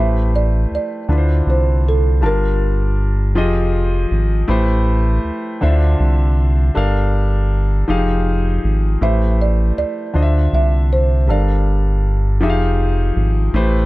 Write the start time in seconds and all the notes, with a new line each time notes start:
Already playing: A1 A3 E4 G4 B4 C5 E5
0.36 D5
0.71 D2 D5
1.09 D2 D3 D4 E4 F4 B4
1.18 C5
1.47 C2 C5
1.89 A4
2.21 G1 G3 D4 F4 A#4 A5
2.26 A#4
3.35 F1 F3 F4 G4 G#4 D#5
4.11 G#1
4.48 A1 A3 E4 G4 B4 C5
5.24 D2
5.61 D2 D3 D4 E4 C5 E5
5.68 F4
6.00 C2
6.75 G1 G3 D4 A4 A#4 F5
7.88 F1 F3 D#4 G4 G#4 F5
8.64 G#1
9.01 A1 A3 E4 G4 B4 C5 E5
9.42 D5
9.78 D2 D5
10.13 D2 D3 D4 F4 C5 D#5
10.22 E5
10.53 C2 E5
10.93 C5
11.28 G1 G3 D4 A4 A#4 D5 F5
12.41 F1 F3 D#4 G4 G#4 E5
12.50 F5
13.16 G#1
13.54 A1 A3 E4 G4 B4 C5